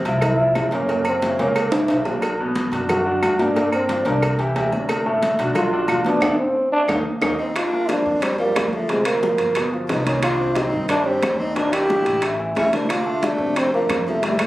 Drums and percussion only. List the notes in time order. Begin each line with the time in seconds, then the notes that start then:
0.05 cowbell, high conga, low agogo
0.21 cowbell, high conga, low conga, low agogo, claves
0.39 high conga
0.55 cowbell, high conga, low timbale, low agogo, claves
0.71 cowbell, high conga
0.88 cowbell, high conga, low agogo
1.05 high conga, low agogo, claves
1.22 cowbell, high conga, low agogo
1.39 cowbell, high conga
1.56 cowbell, high conga, low agogo, claves
1.72 cowbell, high conga, high timbale
1.88 cowbell, high conga, high timbale, low agogo
2.05 high conga, low timbale, low agogo
2.22 cowbell, high conga, low agogo, claves
2.39 high conga
2.56 cowbell, high conga, low agogo
2.73 cowbell, high conga, low agogo
2.89 cowbell, high conga, low conga, low agogo, claves
3.06 high conga
3.23 cowbell, high conga, low agogo, claves
3.39 cowbell, high conga
3.56 cowbell, high conga, low agogo
3.72 high conga, low agogo, claves
3.89 cowbell, high conga, low agogo
4.05 cowbell, high conga
4.22 cowbell, high conga, low agogo, claves
4.39 cowbell, high conga
4.56 cowbell, high conga, low timbale, low agogo
4.72 high conga, low agogo
4.89 cowbell, high conga, low agogo, claves
5.06 high conga
5.22 cowbell, high conga, low agogo
5.39 cowbell, high conga, low agogo
5.55 cowbell, high conga, low conga, low agogo, claves
5.72 high conga
5.88 cowbell, high conga, low agogo, claves
6.05 cowbell, high conga
6.22 cowbell, high conga, high timbale, claves
6.88 cowbell, high conga, high timbale, claves
7.22 cowbell, high conga, high timbale, claves
7.56 high bongo, high conga, high timbale, claves
7.73 high conga
7.89 high bongo, high conga, high timbale
8.06 high conga
8.22 high bongo, high conga, high timbale, claves
8.40 high conga
8.56 high bongo, low bongo, high conga, high timbale, low timbale, claves
8.73 high conga
8.89 high bongo, high conga, high timbale
9.05 high bongo, high conga, high timbale, claves
9.23 high bongo, high conga
9.38 high conga, high timbale
9.55 high bongo, high conga, high timbale, claves
9.74 high bongo, high conga
9.89 high bongo, low bongo, high conga, high timbale
10.07 high bongo, high conga, high timbale
10.23 high bongo, high conga, high timbale, claves
10.40 high conga
10.55 high bongo, high conga, high timbale
10.74 high conga
10.89 high bongo, high conga, high timbale, claves
11.07 high conga
11.22 high bongo, low bongo, high conga, high timbale, claves
11.56 high bongo, high conga, high timbale
11.72 high bongo, high conga, high timbale, claves
11.90 high bongo, high conga
12.06 high timbale
12.22 high bongo, high conga, high timbale, claves
12.39 high bongo, high conga
12.56 high bongo, low bongo, high conga, high timbale, low timbale
12.73 high bongo, high conga, high timbale
12.89 high bongo, high conga, high timbale, claves
13.06 high conga
13.23 high bongo, high conga, high timbale
13.40 high conga
13.56 high bongo, high conga, high timbale, claves
13.73 high conga
13.90 high bongo, low bongo, high conga, high timbale, claves
14.07 high conga
14.23 high bongo, high conga, high timbale
14.39 high bongo, high conga, high timbale, claves